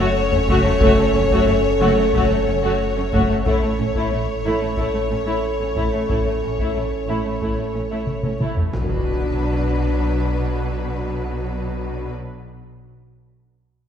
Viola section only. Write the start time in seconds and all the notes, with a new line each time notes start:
0.00 A3
0.31 A3
0.49 A3
0.66 A3
0.82 A3
1.00 A3
1.15 A3
1.32 A3
1.48 A3
1.81 A3
1.99 A3
2.14 A3
2.31 A3
2.47 A3
2.63 A3
2.97 A3
3.14 A3
3.29 A3
3.47 A3
3.63 A3
3.80 A3
3.96 A3
4.14 A3
4.47 A3
4.63 A3
4.79 A3
4.94 A3
5.11 A3
5.27 A3
5.61 A3
5.77 A3
5.94 A3
6.10 A3
6.27 A3
6.43 A3
6.60 A3
6.76 A3
7.09 A3
7.26 A3
7.43 A3
7.59 A3
7.75 A3
7.92 A3
8.25 A3
8.42 A3
8.59 A3
8.75 F#3